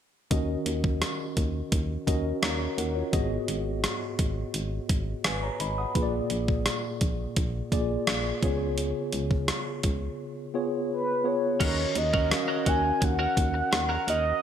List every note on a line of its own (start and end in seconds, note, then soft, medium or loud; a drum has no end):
0.31 0.56 D#2 medium
0.31 1.33 D#3 medium
0.31 1.19 C#4 medium
0.31 1.19 F#4 medium
0.31 1.19 A#4 medium
0.31 1.20 D#5 medium
0.31 kick medium
0.31 closed hi-hat medium
0.66 1.04 D#2 medium
0.66 closed hi-hat medium
0.84 kick medium
1.02 cross-stick medium
1.02 closed hi-hat medium
1.37 1.62 D#2 medium
1.37 kick medium
1.37 closed hi-hat medium
1.72 1.97 D#2 loud
1.72 kick medium
1.72 closed hi-hat medium
2.07 2.33 D#2 medium
2.07 2.51 C#4 medium
2.07 2.43 F#4 medium
2.07 2.43 A#4 medium
2.07 2.43 D#5 medium
2.07 kick medium
2.07 closed hi-hat medium
2.42 2.68 D#2 medium
2.42 2.77 C#5 medium
2.42 2.76 A#5 medium
2.42 cross-stick loud
2.42 closed hi-hat medium
2.78 3.03 D#2 medium
2.78 2.95 A#4 medium
2.78 2.95 F#5 medium
2.78 closed hi-hat medium
2.96 3.29 F4 soft
2.96 3.29 C#5 medium
3.13 3.39 G#1 loud
3.13 4.15 G#2 medium
3.13 4.01 B3 medium
3.13 4.01 F#4 medium
3.13 4.01 G#4 medium
3.13 4.02 D#5 medium
3.13 kick medium
3.13 closed hi-hat medium
3.48 3.86 G#1 loud
3.48 closed hi-hat medium
3.84 cross-stick medium
3.84 closed hi-hat medium
4.19 4.44 G#1 medium
4.19 kick medium
4.19 closed hi-hat medium
4.54 4.80 G#1 loud
4.54 closed hi-hat medium
4.89 5.15 G#1 medium
4.89 kick medium
4.89 closed hi-hat medium
5.24 5.50 G#1 loud
5.24 5.42 B4 medium
5.24 5.42 G#5 medium
5.24 cross-stick loud
5.24 closed hi-hat medium
5.43 5.60 C#5 medium
5.43 5.60 A#5 medium
5.60 5.86 G#1 loud
5.60 5.78 D#5 soft
5.60 5.77 B5 medium
5.60 closed hi-hat medium
5.78 6.12 F#5 soft
5.78 6.12 D#6 medium
5.95 6.21 A#1 loud
5.95 6.98 A#2 medium
5.95 6.84 A#3 medium
5.95 6.84 F4 medium
5.95 6.84 G#4 medium
5.95 6.02 B4 medium
5.95 kick medium
5.95 closed hi-hat medium
6.03 6.87 D5 medium
6.30 6.69 A#1 medium
6.30 closed hi-hat medium
6.48 kick medium
6.66 cross-stick medium
6.66 closed hi-hat medium
7.01 7.27 A#1 medium
7.01 kick medium
7.01 closed hi-hat medium
7.36 7.62 A#1 loud
7.36 kick medium
7.36 closed hi-hat medium
7.72 7.98 A#1 loud
7.72 8.16 A#3 medium
7.72 8.16 F4 medium
7.72 8.16 G#4 medium
7.72 8.17 D5 medium
7.72 kick medium
7.72 closed hi-hat medium
8.07 8.33 A#1 medium
8.07 cross-stick loud
8.07 closed hi-hat medium
8.43 8.94 C#2 medium
8.43 9.45 C#3 medium
8.43 9.56 B3 medium
8.43 9.56 F4 medium
8.43 9.56 G#4 medium
8.43 9.56 C#5 medium
8.43 kick medium
8.43 closed hi-hat medium
8.78 closed hi-hat medium
9.13 9.51 C#2 medium
9.13 closed hi-hat medium
9.31 kick medium
9.48 cross-stick medium
9.48 closed hi-hat medium
9.83 10.09 C#2 loud
9.83 kick medium
9.83 closed hi-hat medium
10.54 10.98 B3 medium
10.54 10.99 F4 medium
10.54 10.99 G#4 medium
10.54 10.99 C#5 medium
10.92 11.29 B4 medium
11.24 11.47 B3 medium
11.24 11.47 F4 medium
11.24 11.47 G#4 medium
11.24 11.47 C#5 medium
11.24 11.62 C#5 medium
11.60 11.86 D#2 loud
11.60 12.62 D#3 medium
11.60 12.04 C#4 medium
11.60 11.80 C#4 medium
11.60 12.04 F#4 medium
11.60 11.77 F#4 medium
11.60 12.05 A#4 medium
11.60 11.77 A#4 medium
11.60 11.99 C#5 medium
11.60 12.05 D#5 medium
11.60 kick loud
11.60 closed hi-hat medium
11.60 crash medium
11.78 muted clean electric guitar stroke soft
11.95 12.34 D#2 loud
11.95 12.70 D#5 loud
11.95 muted clean electric guitar stroke soft
11.95 closed hi-hat medium
12.13 12.29 C#4 soft
12.13 12.29 F#4 medium
12.13 12.29 A#4 medium
12.13 kick medium
12.30 12.53 C#4 medium
12.30 12.53 F#4 medium
12.30 12.53 A#4 medium
12.30 12.53 F5 medium
12.30 cross-stick medium
12.30 closed hi-hat medium
12.48 12.64 C#4 medium
12.48 12.65 F#4 medium
12.48 12.65 A#4 medium
12.65 12.92 D#2 medium
12.65 12.82 C#4 medium
12.65 13.54 C#4 medium
12.65 13.54 F#4 medium
12.65 12.82 F#4 medium
12.65 13.55 A#4 medium
12.65 12.82 A#4 medium
12.65 13.55 D#5 medium
12.65 13.06 G#5 medium
12.65 kick medium
12.65 closed hi-hat medium
12.84 muted clean electric guitar stroke soft
13.01 13.27 D#2 loud
13.01 14.09 F#5 loud
13.01 muted clean electric guitar stroke soft
13.01 kick loud
13.01 closed hi-hat medium
13.19 13.35 C#4 medium
13.19 13.36 F#4 medium
13.19 13.36 A#4 medium
13.36 13.62 D#2 medium
13.36 muted clean electric guitar stroke soft
13.36 kick medium
13.36 closed hi-hat medium
13.54 muted clean electric guitar stroke soft
13.72 13.98 D#2 medium
13.72 muted clean electric guitar stroke soft
13.72 cross-stick loud
13.72 closed hi-hat medium
13.89 14.06 C#4 medium
13.89 14.07 F#4 medium
13.89 14.07 A#4 medium
14.07 14.33 D#2 medium
14.07 14.23 C#4 medium
14.07 14.23 F#4 medium
14.07 14.24 A#4 medium
14.07 14.42 D#5 loud
14.07 closed hi-hat medium
14.25 muted clean electric guitar stroke soft